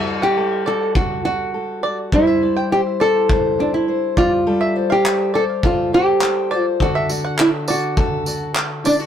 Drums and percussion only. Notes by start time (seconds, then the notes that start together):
0.95 kick
2.12 kick
3.29 kick
4.17 kick
5.06 clap
5.63 kick
6.21 clap
6.80 kick
7.09 tambourine
7.39 clap
7.68 tambourine
7.97 kick
8.26 tambourine
8.56 clap
8.85 tambourine